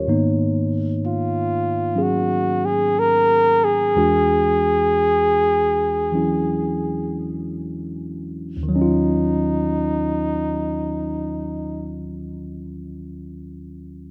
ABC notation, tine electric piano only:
X:1
M:4/4
L:1/8
Q:"Swing" 1/4=52
K:Ebm
V:1 name="Tine electric piano"
d z6 z | z8 | z8 |]
V:2 name="Tine electric piano"
[A,,E,B,CE]4 [G,DA]4 | [=E,,=E,^G,=D^F]4 [E,^F,_D=E]4 | [E,,E,G,DF]8 |]